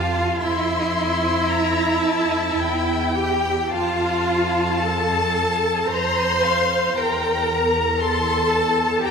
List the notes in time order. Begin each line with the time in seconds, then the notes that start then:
Already playing: F2 F4 F5 A5
0.41 F2 E4 E5 C6
1.50 A#5
2.04 A5
2.58 E2 G5
3.15 G4 G5
3.72 F2 F4 F5 A5
4.81 A4 A5
5.89 F2 C5 A#5 C6
6.44 F5
6.97 E2 A#4 G5 A#5
7.48 A#5
8.00 A4 A5 C6
8.52 A5
9.02 G4 G5 A#5